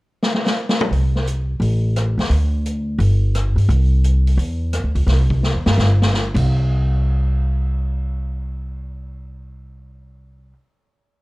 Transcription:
0.23 snare
0.34 snare
0.46 snare
0.69 snare
0.81 mid tom
0.91 upright bass C2, open hi-hat
1.16 snare
1.27 closed hi-hat
1.60 upright bass A1, open hi-hat
1.96 cross-stick, closed hi-hat
2.18 upright bass D#2, snare, open hi-hat
2.30 upright bass D2, open hi-hat
2.66 closed hi-hat
2.99 upright bass G1, open hi-hat
3.35 cross-stick, closed hi-hat
3.56 upright bass G2, open hi-hat
3.68 upright bass C2, open hi-hat
4.04 closed hi-hat
4.27 open hi-hat
4.37 upright bass E2, open hi-hat
4.73 cross-stick, closed hi-hat
4.83 upright bass D2
4.95 upright bass C#2, open hi-hat
5.06 upright bass C2, snare, open hi-hat
5.30 kick
5.43 snare
5.54 upright bass E2
5.66 upright bass G2, snare
5.78 upright bass G1, snare
6.02 snare
6.14 snare
6.34 upright bass C2, kick, crash

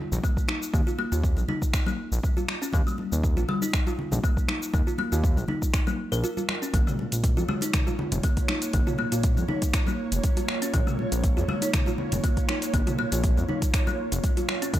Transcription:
0.12 analog synth bass A#1, high conga, low conga, shaker
0.24 kalimba A#3, kick, muted conga, shaker
0.37 kick, shaker
0.48 kalimba D#4, finger snap, muted conga
0.63 shaker
0.74 analog synth bass D#2, kalimba A#3, kick, muted conga, low conga, shaker
0.87 kalimba F4, shaker
0.98 kalimba A#3, muted conga
1.12 analog synth bass D#2, kalimba F4, shaker
1.24 kick, shaker
1.37 analog synth bass A#1, muted conga, shaker
1.48 kalimba D#4, high conga, low conga
1.62 kick, muted conga, shaker
1.74 finger snap, kick, shaker
1.86 kalimba A#3, muted conga, high conga, shaker
2.12 analog synth bass A#1, shaker
2.23 kick, muted conga, shaker
2.37 kalimba F4, high conga, shaker
2.48 finger snap, muted conga
2.62 kalimba C#4, shaker
2.73 analog synth bass D#2, kalimba A#3, kick, muted conga, low conga, shaker
2.87 kalimba G3, shaker
2.98 muted conga, high conga
3.12 analog synth bass D#2, shaker
3.24 kick, shaker
3.37 analog synth bass A#1, kalimba F4, muted conga, shaker
3.48 kalimba G3, high conga, low conga
3.62 kalimba D#4, muted conga, shaker
3.73 finger snap, kick, shaker
3.87 kalimba F4, muted conga, shaker
3.99 low conga
4.11 analog synth bass A#1, high conga, low conga, shaker
4.24 kalimba A#3, kick, muted conga, shaker
4.37 kick, shaker
4.48 kalimba D#4, finger snap, muted conga
4.63 shaker
4.73 analog synth bass D#2, kalimba A#3, kick, muted conga, low conga, shaker
4.87 kalimba F4, shaker
4.98 kalimba A#3, muted conga, high conga
5.12 analog synth bass D#2, kalimba F4, shaker
5.24 kick, shaker
5.37 analog synth bass A#1, muted conga, shaker
5.48 kalimba D#4, high conga, low conga
5.62 kick, muted conga, shaker
5.74 finger snap, kick, shaker
5.87 kalimba A#3, muted conga, high conga, shaker
6.12 analog synth bass A#1, kalimba A#4, shaker
6.23 kalimba F4, muted conga, shaker
6.37 kalimba F4, high conga, shaker
6.49 finger snap, muted conga
6.62 kalimba C#4, shaker
6.73 analog synth bass A#1, ambient pad A#3 F4 C#5, kalimba A#3, kick, closed hi-hat, muted conga, low conga, shaker
6.87 kalimba G#3, mid tom, shaker
6.99 muted conga, high conga
7.12 analog synth bass A#1, closed hi-hat, shaker
7.24 kick, closed hi-hat, shaker
7.37 analog synth bass F2, kalimba F4, muted conga, shaker
7.48 kalimba G#3, high conga, low conga
7.61 kalimba D#4, closed hi-hat, muted conga, shaker
7.73 finger snap, kick, closed hi-hat, mid tom, shaker
7.87 kalimba F4, muted conga, shaker
7.99 low conga
8.12 analog synth bass F1, closed hi-hat, high conga, low conga, shaker
8.23 kalimba A#3, kick, closed hi-hat, muted conga, shaker
8.37 kick, closed hi-hat, shaker
8.48 kalimba D#4, finger snap, muted conga
8.62 closed hi-hat, shaker
8.73 analog synth bass A#1, kalimba A#3, kick, closed hi-hat, muted conga, low conga, shaker
8.87 kalimba F4, mid tom, shaker
8.98 kalimba A#3, muted conga
9.12 analog synth bass A#1, kalimba F4, closed hi-hat, shaker
9.23 kick, closed hi-hat, shaker
9.37 analog synth bass F2, muted conga, shaker
9.48 kalimba D#4, high conga, low conga
9.62 kick, closed hi-hat, muted conga, shaker
9.73 finger snap, kick, closed hi-hat, shaker
9.87 kalimba A#3, muted conga, high conga, shaker
10.12 analog synth bass F1, closed hi-hat, shaker
10.24 kick, closed hi-hat, muted conga, shaker
10.36 kalimba F4, closed hi-hat, high conga, shaker
10.48 finger snap, muted conga
10.62 kalimba C#4, closed hi-hat, shaker
10.74 analog synth bass A#1, kalimba A#3, kick, closed hi-hat, muted conga, low conga, shaker
10.87 kalimba G#3, mid tom, shaker
10.99 muted conga, high conga
11.12 analog synth bass A#1, closed hi-hat, shaker
11.24 kick, closed hi-hat, shaker
11.37 analog synth bass F2, kalimba F4, muted conga, shaker
11.48 kalimba G#3, high conga, low conga
11.61 kalimba D#4, closed hi-hat, muted conga, shaker
11.74 finger snap, kick, closed hi-hat, mid tom, shaker
11.86 kalimba F4, muted conga, shaker
11.98 low conga
12.12 analog synth bass F1, closed hi-hat, high conga, low conga, shaker
12.24 kalimba A#3, kick, closed hi-hat, muted conga, shaker
12.37 kick, closed hi-hat, shaker
12.49 kalimba D#4, finger snap, muted conga
12.62 closed hi-hat, shaker
12.74 analog synth bass A#1, kalimba A#3, kick, closed hi-hat, muted conga, low conga, shaker
12.87 kalimba F4, closed hi-hat, mid tom, shaker
12.98 kalimba A#3, muted conga
13.12 analog synth bass A#1, kalimba F4, closed hi-hat, shaker
13.24 kick, closed hi-hat, shaker
13.37 analog synth bass F2, muted conga, shaker
13.48 kalimba D#4, high conga, low conga
13.62 kick, closed hi-hat, muted conga, shaker
13.74 finger snap, kick, closed hi-hat, shaker
13.87 kalimba A#3, muted conga, high conga, shaker
14.12 analog synth bass F1, closed hi-hat, shaker
14.23 kick, closed hi-hat, muted conga, shaker
14.37 kalimba F4, closed hi-hat, high conga, shaker
14.48 finger snap, muted conga
14.62 kalimba C#4, closed hi-hat, shaker
14.73 analog synth bass D#2, ambient pad G3 D#5, kalimba A#3, kick, closed hi-hat, muted conga, low conga, shaker

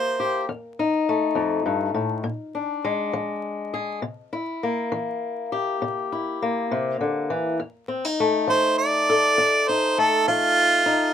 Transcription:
Already playing: steel-string acoustic guitar E3 A#3 E4 G4, harmonica C5
0.20 steel-string acoustic guitar G4
0.49 steel-string acoustic guitar F2
0.79 steel-string acoustic guitar D#4
1.09 steel-string acoustic guitar A3
1.35 steel-string acoustic guitar F2
1.66 steel-string acoustic guitar G2
1.94 steel-string acoustic guitar A2
2.24 steel-string acoustic guitar A#2
2.55 steel-string acoustic guitar D4
2.84 steel-string acoustic guitar G#3
3.13 steel-string acoustic guitar F3
3.74 steel-string acoustic guitar G#4
4.02 steel-string acoustic guitar C3
4.33 steel-string acoustic guitar E4
4.63 steel-string acoustic guitar A#3
4.92 steel-string acoustic guitar E3
5.52 steel-string acoustic guitar G4
5.82 steel-string acoustic guitar C3
6.12 steel-string acoustic guitar E4
6.42 steel-string acoustic guitar A#3
6.71 steel-string acoustic guitar C3
7.01 steel-string acoustic guitar D3
7.30 steel-string acoustic guitar E3
7.60 steel-string acoustic guitar F2
7.88 steel-string acoustic guitar C4
8.05 steel-string acoustic guitar D#4
8.20 steel-string acoustic guitar A3
8.47 steel-string acoustic guitar F3, harmonica C5
8.78 harmonica D5
9.10 steel-string acoustic guitar A4
9.38 steel-string acoustic guitar F2
9.68 steel-string acoustic guitar D#4, harmonica C5
9.98 steel-string acoustic guitar A3, harmonica A4
10.28 steel-string acoustic guitar F3, harmonica F4
10.86 steel-string acoustic guitar D#4

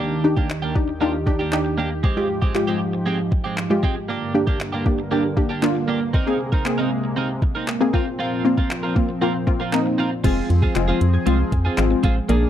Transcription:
Already playing: analog synth pad D#2 D#3 G4, clean electric guitar A#3, synth stab D4 D#4 G4
0.00 clean electric guitar D4 G4
0.24 synth stab D4 D#4 G4
0.37 clean electric guitar A#3 D4 G4, kick
0.50 muted clean electric guitar stroke, clap
0.62 clean electric guitar A#3 D4 G4
0.75 synth stab D4 D#4 G4, muted clean electric guitar stroke, kick
0.88 muted clean electric guitar stroke
1.01 clean electric guitar A#3 D4 G4, synth stab D4 D#4 F4
1.14 muted clean electric guitar stroke
1.26 synth stab D4 D#4 G4, muted clean electric guitar stroke, kick
1.39 clean electric guitar A#3 D4 G4
1.52 synth stab D4 D#4 G4, clap
1.65 muted clean electric guitar stroke
1.78 clean electric guitar A#3 D4 G4
1.91 muted clean electric guitar stroke
2.03 analog synth pad G#2 F3, clean electric guitar G#3 C4 G4, kick
2.17 synth stab G#3 F4 G4
2.29 muted clean electric guitar stroke
2.42 clean electric guitar G#3 C4 G4, kick
2.55 synth stab G#3 F4 G4, muted clean electric guitar stroke, clap
2.67 clean electric guitar G#3 C4 G4
2.81 muted clean electric guitar stroke
2.93 muted clean electric guitar stroke
3.06 clean electric guitar G#3 C4 G4
3.19 muted clean electric guitar stroke
3.32 muted clean electric guitar stroke, kick
3.44 clean electric guitar G#3 C4 G4
3.58 clap
3.70 synth stab G#3 F4 G4, muted clean electric guitar stroke
3.83 clean electric guitar G#3 C4 G4, kick
3.96 muted clean electric guitar stroke
4.08 analog synth pad G2 D3 A#3, clean electric guitar A#3 D4 G4
4.34 synth stab A#3 D4 G4, muted clean electric guitar stroke
4.47 clean electric guitar A#3 D4 G4, kick
4.60 muted clean electric guitar stroke, clap
4.73 clean electric guitar A#3 D4 G4
4.86 synth stab A#3 D4 G4, kick
4.99 muted clean electric guitar stroke
5.11 synth stab A#3 D4 G4, clean electric guitar A#3 D4 G4
5.24 muted clean electric guitar stroke
5.37 synth stab A#3 D4 G4, muted clean electric guitar stroke, kick
5.49 clean electric guitar A#3 D4 G4
5.63 synth stab A#3 D4 F4, clap
5.75 muted clean electric guitar stroke
5.88 clean electric guitar A#3 D4 G4
6.01 muted clean electric guitar stroke
6.13 analog synth pad C3 G#3, clean electric guitar C4 D#4 A#4, kick
6.27 synth stab A#3 C4 G#4
6.39 muted clean electric guitar stroke
6.52 clean electric guitar C4 D#4 A#4, kick
6.65 synth stab A#3 C4 G#4, muted clean electric guitar stroke, clap
6.78 clean electric guitar C4 D#4 A#4
6.91 muted clean electric guitar stroke
7.04 muted clean electric guitar stroke
7.16 clean electric guitar C4 D#4 A#4
7.30 muted clean electric guitar stroke
7.42 muted clean electric guitar stroke, kick
7.55 clean electric guitar C4 D#4 A#4
7.68 clap
7.80 synth stab A#3 C4 G#4, muted clean electric guitar stroke
7.93 analog synth pad A#2 F3 C4, synth stab A#3 C4 F4, clean electric guitar C4 F4 A#4, kick
8.06 muted clean electric guitar stroke
8.19 clean electric guitar C4 F4 A#4
8.45 synth stab A#3 C4 F4, muted clean electric guitar stroke
8.58 clean electric guitar C4 F4 A#4, kick
8.71 muted clean electric guitar stroke, clap
8.83 clean electric guitar C4 F4 A#4
8.96 synth stab A#3 C4 F4, muted clean electric guitar stroke, kick
9.09 muted clean electric guitar stroke
9.21 synth stab A#3 C4 F4, clean electric guitar C4 F4 A#4
9.34 muted clean electric guitar stroke
9.47 synth stab A#3 C4 F4, muted clean electric guitar stroke, kick
9.60 clean electric guitar C4 F4 A#4
9.73 synth stab A#3 C4 D#4, clap
9.86 muted clean electric guitar stroke
9.98 clean electric guitar C4 F4 A#4
10.11 muted clean electric guitar stroke
10.24 fm bass F1, analog synth pad F3 C4 G#4, synth stab G#3 C4 F4, synth pluck G#3, clean electric guitar C4 F4 G#4, kick, closed hi-hat, crash
10.37 synth pluck C4
10.50 fm bass F2, synth pluck F4, muted clean electric guitar stroke, closed hi-hat
10.62 clean electric guitar C4 F4 G#4, synth pluck G#4, kick
10.75 fm bass F1, synth stab G#3 C4 F4, synth pluck G#5, muted clean electric guitar stroke, clap, closed hi-hat
10.88 clean electric guitar C4 F4 G#4
11.01 fm bass F2, closed hi-hat
11.14 synth pluck G#6, muted clean electric guitar stroke
11.26 fm bass C2, synth stab G#3 C4 F4, clean electric guitar C4 F4 G#4, synth pluck F6, closed hi-hat
11.39 synth pluck C6, muted clean electric guitar stroke
11.52 fm bass F2, synth pluck G#5, muted clean electric guitar stroke, kick, closed hi-hat
11.65 clean electric guitar C4 F4 G#4, synth pluck G#4
11.78 fm bass G#1, synth stab G#3 C4 F4, clap, closed hi-hat
11.91 synth pluck C4, muted clean electric guitar stroke
12.03 fm bass A1, synth pluck G#3, clean electric guitar C4 F4 G#4, kick, closed hi-hat
12.16 muted clean electric guitar stroke
12.29 fm bass A#1, analog synth pad G#3 A#3 D4, clean electric guitar A#3 D4 G#4, synth stab A#3 D4 G#4, synth pluck A#3, closed hi-hat
12.42 synth pluck D4

